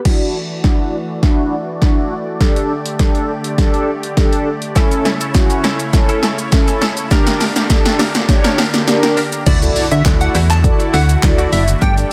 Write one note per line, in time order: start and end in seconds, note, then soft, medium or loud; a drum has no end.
0.05 2.38 E3 medium
0.05 4.72 A3 medium
0.05 0.37 D4 medium
0.05 0.37 E4 medium
0.05 2.38 F#4 medium
0.05 0.37 F#4 loud
0.05 4.72 D5 medium
0.05 kick loud
0.05 snare medium
0.05 crash medium
0.64 0.96 D4 medium
0.64 0.96 E4 medium
0.64 0.96 F#4 medium
0.64 kick loud
0.64 snare medium
1.23 1.55 D4 medium
1.23 1.55 E4 medium
1.23 1.55 F#4 loud
1.23 kick loud
1.23 snare medium
1.82 2.14 D4 medium
1.82 2.14 E4 medium
1.82 2.14 F#4 loud
1.82 kick loud
1.82 snare medium
2.40 4.74 D3 medium
2.40 2.72 D4 medium
2.40 2.73 G4 medium
2.40 4.74 G4 medium
2.40 2.73 A4 loud
2.40 kick loud
2.40 snare medium
2.40 closed hi-hat medium
2.56 closed hi-hat medium
2.86 closed hi-hat medium
2.99 3.31 D4 medium
2.99 3.31 G4 medium
2.99 3.32 A4 medium
2.99 kick loud
2.99 snare medium
2.99 closed hi-hat medium
3.15 closed hi-hat soft
3.44 closed hi-hat medium
3.58 3.90 D4 loud
3.58 3.90 G4 medium
3.58 3.90 A4 loud
3.58 kick loud
3.58 snare medium
3.58 closed hi-hat medium
3.74 closed hi-hat soft
4.03 closed hi-hat medium
4.17 4.49 D4 medium
4.17 4.49 G4 medium
4.17 4.49 A4 loud
4.17 kick loud
4.17 snare medium
4.17 closed hi-hat medium
4.33 closed hi-hat medium
4.62 closed hi-hat medium
4.75 7.09 C#3 medium
4.75 7.09 A3 medium
4.75 4.97 C#4 medium
4.75 5.08 C#4 loud
4.75 7.09 E4 medium
4.75 5.08 E4 medium
4.75 4.98 E4 medium
4.75 5.08 A4 loud
4.75 4.98 A4 medium
4.75 7.09 C#5 medium
4.75 kick loud
4.75 snare medium
4.75 closed hi-hat medium
4.75 shaker medium
4.91 closed hi-hat medium
4.91 shaker medium
5.05 5.20 C#4 medium
5.05 5.20 E4 medium
5.05 5.19 A4 medium
5.05 snare medium
5.05 shaker medium
5.20 5.33 C#4 medium
5.20 5.34 E4 medium
5.20 5.34 A4 medium
5.20 closed hi-hat medium
5.20 shaker medium
5.34 5.67 C#4 medium
5.34 5.67 E4 medium
5.34 5.67 F#4 loud
5.34 muted clean electric guitar stroke soft
5.34 kick loud
5.34 snare medium
5.34 closed hi-hat medium
5.34 shaker medium
5.50 muted clean electric guitar stroke medium
5.50 closed hi-hat medium
5.50 shaker medium
5.64 5.86 C#4 medium
5.64 5.79 E4 medium
5.64 5.78 A4 medium
5.64 snare medium
5.64 shaker medium
5.79 muted clean electric guitar stroke medium
5.79 closed hi-hat medium
5.79 shaker medium
5.93 6.25 C#4 loud
5.93 6.26 E4 medium
5.93 6.26 A4 loud
5.93 muted clean electric guitar stroke soft
5.93 kick loud
5.93 snare medium
5.93 closed hi-hat medium
5.93 shaker medium
6.09 6.21 C#4 medium
6.09 6.22 E4 medium
6.09 6.23 A4 medium
6.09 closed hi-hat medium
6.09 shaker soft
6.23 6.44 C#4 medium
6.23 6.38 E4 medium
6.23 6.37 A4 medium
6.23 snare medium
6.23 shaker soft
6.38 muted clean electric guitar stroke soft
6.38 closed hi-hat medium
6.38 shaker medium
6.52 6.84 C#4 medium
6.52 6.84 E4 medium
6.52 6.85 A4 loud
6.52 muted clean electric guitar stroke soft
6.52 kick loud
6.52 snare medium
6.52 closed hi-hat medium
6.52 shaker medium
6.68 muted clean electric guitar stroke medium
6.68 closed hi-hat medium
6.68 shaker medium
6.81 6.97 C#4 medium
6.81 6.96 E4 loud
6.81 6.96 A4 loud
6.81 snare loud
6.81 shaker soft
6.97 7.10 C#4 medium
6.97 7.11 E4 medium
6.97 7.12 A4 medium
6.97 closed hi-hat medium
6.97 shaker medium
7.11 9.44 D3 medium
7.11 9.44 A#3 medium
7.11 7.33 D4 medium
7.11 7.43 D4 loud
7.11 9.44 D4 medium
7.11 7.43 G4 medium
7.11 9.44 G4 medium
7.11 7.33 G4 loud
7.11 7.43 A#4 loud
7.11 7.33 A#4 loud
7.11 kick loud
7.11 snare loud
7.11 closed hi-hat medium
7.11 shaker medium
7.27 snare loud
7.27 closed hi-hat medium
7.27 shaker medium
7.40 7.56 D4 medium
7.40 7.55 G4 medium
7.40 7.54 A#4 medium
7.40 snare loud
7.40 open hi-hat medium
7.40 shaker medium
7.56 7.68 D4 medium
7.56 7.69 G4 medium
7.56 7.69 A#4 medium
7.56 snare loud
7.56 closed hi-hat medium
7.56 shaker medium
7.70 8.02 D4 medium
7.70 8.02 G4 medium
7.70 8.02 A4 loud
7.70 kick loud
7.70 snare loud
7.70 closed hi-hat medium
7.70 shaker medium
7.85 muted clean electric guitar stroke medium
7.85 snare loud
7.85 closed hi-hat medium
7.85 shaker medium
7.99 8.21 D4 medium
7.99 8.14 G4 medium
7.99 8.13 A#4 loud
7.99 snare loud
7.99 open hi-hat medium
7.99 shaker medium
8.14 muted clean electric guitar stroke soft
8.14 snare loud
8.14 closed hi-hat medium
8.14 shaker medium
8.28 8.61 D4 loud
8.28 8.61 G4 loud
8.28 8.61 C#5 loud
8.28 muted clean electric guitar stroke soft
8.28 kick loud
8.28 snare loud
8.28 closed hi-hat medium
8.28 shaker medium
8.44 8.56 D4 medium
8.44 8.57 G4 medium
8.44 8.58 A#4 medium
8.44 snare loud
8.44 closed hi-hat medium
8.44 shaker medium
8.58 8.80 D4 medium
8.58 8.73 G4 loud
8.58 8.72 A#4 medium
8.58 snare loud
8.58 open hi-hat medium
8.58 shaker soft
8.73 muted clean electric guitar stroke soft
8.73 snare loud
8.73 closed hi-hat medium
8.73 shaker medium
8.87 9.20 D4 loud
8.87 9.20 G4 medium
8.87 9.20 A#4 loud
8.87 muted clean electric guitar stroke soft
8.87 snare loud
8.87 closed hi-hat medium
8.87 shaker medium
9.03 muted clean electric guitar stroke medium
9.03 snare loud
9.03 closed hi-hat medium
9.03 shaker medium
9.17 9.32 D4 medium
9.17 9.32 G4 medium
9.17 9.31 A#4 loud
9.17 open hi-hat medium
9.17 shaker soft
9.32 9.46 D4 medium
9.32 9.47 G4 medium
9.32 9.48 A#4 medium
9.32 closed hi-hat medium
9.32 shaker medium
9.46 9.70 D2 loud
9.46 12.13 D3 medium
9.46 9.73 A3 medium
9.46 12.13 A3 medium
9.46 11.80 E4 medium
9.46 9.74 E4 medium
9.46 11.79 F#4 medium
9.46 9.74 F#4 loud
9.46 9.59 D5 loud
9.46 kick loud
9.46 closed hi-hat medium
9.46 crash loud
9.46 impact medium
9.46 shaker medium
9.62 9.86 E4 medium
9.62 9.86 F#4 medium
9.62 9.86 A4 medium
9.62 9.86 D5 medium
9.62 closed hi-hat medium
9.62 shaker medium
9.76 muted clean electric guitar stroke soft
9.76 open hi-hat medium
9.76 shaker medium
9.91 10.02 D3 loud
9.91 10.04 A3 medium
9.91 10.04 E4 medium
9.91 10.05 F#4 medium
9.91 10.02 E5 medium
9.91 closed hi-hat medium
9.91 shaker medium
10.05 10.28 D2 medium
10.05 10.37 E4 medium
10.05 10.37 F#4 medium
10.05 10.37 A4 medium
10.05 10.38 D5 medium
10.05 muted clean electric guitar stroke soft
10.05 kick loud
10.05 snare medium
10.05 clap loud
10.05 closed hi-hat medium
10.05 shaker medium
10.21 10.32 F#5 medium
10.21 muted clean electric guitar stroke soft
10.21 closed hi-hat medium
10.21 shaker medium
10.34 10.70 E2 loud
10.34 10.56 A3 medium
10.34 10.50 E4 loud
10.34 10.49 F#4 loud
10.34 open hi-hat medium
10.34 shaker medium
10.50 10.61 A5 medium
10.50 muted clean electric guitar stroke soft
10.50 clap medium
10.50 closed hi-hat medium
10.50 shaker medium
10.64 10.96 E4 medium
10.64 10.96 F#4 medium
10.64 10.96 A4 medium
10.64 10.96 D5 loud
10.64 kick loud
10.64 closed hi-hat medium
10.64 shaker medium
10.79 muted clean electric guitar stroke soft
10.79 closed hi-hat medium
10.79 shaker medium
10.93 11.17 D2 loud
10.93 11.15 A3 medium
10.93 11.08 E4 medium
10.93 11.08 F#4 loud
10.93 11.16 F#5 medium
10.93 open hi-hat medium
10.93 shaker soft
11.09 muted clean electric guitar stroke soft
11.09 closed hi-hat medium
11.09 shaker medium
11.23 11.46 D2 medium
11.23 11.63 E4 medium
11.23 11.63 F#4 medium
11.23 11.64 A4 medium
11.23 11.64 D5 loud
11.23 muted clean electric guitar stroke soft
11.23 kick loud
11.23 snare medium
11.23 clap loud
11.23 closed hi-hat medium
11.23 shaker medium
11.38 11.51 A3 medium
11.38 11.51 E4 medium
11.38 11.52 F#4 medium
11.38 closed hi-hat medium
11.38 shaker medium
11.52 11.75 F#1 loud
11.52 11.65 E5 medium
11.52 open hi-hat medium
11.52 shaker soft
11.68 muted clean electric guitar stroke medium
11.68 closed hi-hat medium
11.68 shaker medium
11.81 12.05 G1 loud
11.81 12.13 G3 medium
11.81 12.09 D4 medium
11.81 12.13 G4 medium
11.81 12.09 G4 loud
11.81 12.09 A4 medium
11.81 11.94 G5 loud
11.81 kick loud
11.81 closed hi-hat medium
11.81 shaker medium
11.97 12.13 D4 medium
11.97 12.13 G4 medium
11.97 12.13 A4 medium
11.97 12.13 D5 medium
11.97 closed hi-hat medium
11.97 shaker medium